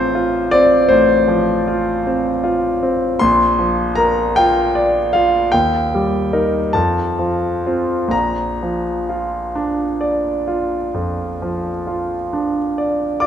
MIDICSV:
0, 0, Header, 1, 2, 480
1, 0, Start_track
1, 0, Key_signature, -2, "major"
1, 0, Tempo, 762389
1, 2014, Tempo, 778210
1, 2015, Time_signature, 12, 3, 24, 8
1, 3934, Tempo, 865801
1, 4414, Tempo, 937500
1, 6814, Tempo, 895522
1, 7565, End_track
2, 0, Start_track
2, 0, Title_t, "Grand piano"
2, 0, Program_c, 0, 0
2, 0, Control_c, 0, 64, 127
2, 0, Note_on_c, 0, 33, 49
2, 0, Note_on_c, 0, 53, 39
2, 0, Note_on_c, 0, 60, 45
2, 0, Note_on_c, 0, 65, 40
2, 0, Note_on_c, 0, 72, 76
2, 0, Note_on_c, 0, 74, 67
2, 94, Note_off_c, 0, 65, 0
2, 94, Note_on_c, 0, 65, 43
2, 236, Note_off_c, 0, 60, 0
2, 324, Note_off_c, 0, 74, 0
2, 324, Note_on_c, 0, 74, 76
2, 325, Note_off_c, 0, 72, 0
2, 332, Note_on_c, 0, 60, 47
2, 469, Note_off_c, 0, 65, 0
2, 541, Note_off_c, 0, 33, 0
2, 557, Note_on_c, 0, 72, 73
2, 562, Note_off_c, 0, 74, 0
2, 568, Note_on_c, 0, 33, 47
2, 710, Note_off_c, 0, 60, 0
2, 805, Note_off_c, 0, 53, 0
2, 805, Note_on_c, 0, 53, 43
2, 1054, Note_on_c, 0, 65, 42
2, 1195, Note_off_c, 0, 53, 0
2, 1301, Note_on_c, 0, 60, 37
2, 1440, Note_off_c, 0, 65, 0
2, 1534, Note_on_c, 0, 65, 41
2, 1681, Note_off_c, 0, 60, 0
2, 1770, Note_off_c, 0, 72, 0
2, 1779, Note_on_c, 0, 60, 41
2, 1918, Note_off_c, 0, 65, 0
2, 1992, Note_off_c, 0, 33, 0
2, 2011, Note_on_c, 0, 84, 87
2, 2018, Note_off_c, 0, 60, 0
2, 2021, Note_on_c, 0, 34, 55
2, 2023, Control_c, 0, 64, 0
2, 2133, Control_c, 0, 64, 127
2, 2255, Note_on_c, 0, 53, 38
2, 2480, Note_on_c, 0, 82, 72
2, 2493, Note_on_c, 0, 70, 43
2, 2495, Note_off_c, 0, 84, 0
2, 2639, Note_off_c, 0, 53, 0
2, 2727, Note_off_c, 0, 82, 0
2, 2731, Note_on_c, 0, 79, 80
2, 2740, Note_on_c, 0, 65, 48
2, 2875, Note_off_c, 0, 70, 0
2, 2972, Note_on_c, 0, 74, 47
2, 3119, Note_off_c, 0, 65, 0
2, 3205, Note_on_c, 0, 77, 67
2, 3209, Note_off_c, 0, 79, 0
2, 3214, Note_on_c, 0, 65, 46
2, 3353, Note_off_c, 0, 74, 0
2, 3427, Note_off_c, 0, 34, 0
2, 3444, Note_on_c, 0, 79, 79
2, 3445, Note_off_c, 0, 77, 0
2, 3450, Note_off_c, 0, 65, 0
2, 3455, Note_on_c, 0, 39, 48
2, 3460, Control_c, 0, 64, 0
2, 3558, Control_c, 0, 64, 127
2, 3707, Note_on_c, 0, 55, 39
2, 3945, Note_on_c, 0, 63, 35
2, 3945, Note_on_c, 0, 70, 39
2, 4082, Note_off_c, 0, 55, 0
2, 4151, Note_off_c, 0, 39, 0
2, 4151, Note_off_c, 0, 63, 0
2, 4151, Note_off_c, 0, 70, 0
2, 4166, Note_off_c, 0, 79, 0
2, 4166, Note_on_c, 0, 81, 67
2, 4173, Note_on_c, 0, 41, 41
2, 4180, Control_c, 0, 64, 0
2, 4290, Control_c, 0, 64, 127
2, 4420, Note_on_c, 0, 53, 33
2, 4662, Note_on_c, 0, 60, 28
2, 4663, Note_on_c, 0, 65, 36
2, 4797, Note_off_c, 0, 53, 0
2, 4875, Note_off_c, 0, 41, 0
2, 4876, Note_on_c, 0, 34, 40
2, 4879, Note_off_c, 0, 60, 0
2, 4879, Note_off_c, 0, 65, 0
2, 4892, Note_off_c, 0, 81, 0
2, 4892, Note_on_c, 0, 82, 64
2, 4905, Control_c, 0, 64, 0
2, 5001, Control_c, 0, 64, 127
2, 5155, Note_on_c, 0, 53, 32
2, 5395, Note_on_c, 0, 65, 33
2, 5532, Note_off_c, 0, 53, 0
2, 5631, Note_on_c, 0, 62, 36
2, 5767, Note_off_c, 0, 65, 0
2, 5863, Note_on_c, 0, 74, 35
2, 6006, Note_off_c, 0, 62, 0
2, 6103, Note_on_c, 0, 65, 34
2, 6243, Note_off_c, 0, 74, 0
2, 6308, Note_off_c, 0, 34, 0
2, 6341, Note_on_c, 0, 41, 34
2, 6485, Note_off_c, 0, 65, 0
2, 6587, Note_on_c, 0, 53, 36
2, 6721, Note_off_c, 0, 41, 0
2, 6817, Note_on_c, 0, 65, 31
2, 6962, Note_off_c, 0, 53, 0
2, 7064, Note_on_c, 0, 62, 32
2, 7197, Note_off_c, 0, 65, 0
2, 7305, Note_on_c, 0, 74, 33
2, 7441, Note_off_c, 0, 62, 0
2, 7530, Note_off_c, 0, 74, 0
2, 7531, Note_on_c, 0, 86, 58
2, 7533, Note_off_c, 0, 82, 0
2, 7538, Note_on_c, 0, 74, 45
2, 7539, Note_on_c, 0, 65, 30
2, 7565, Note_off_c, 0, 65, 0
2, 7565, Note_off_c, 0, 74, 0
2, 7565, Note_off_c, 0, 86, 0
2, 7565, End_track
0, 0, End_of_file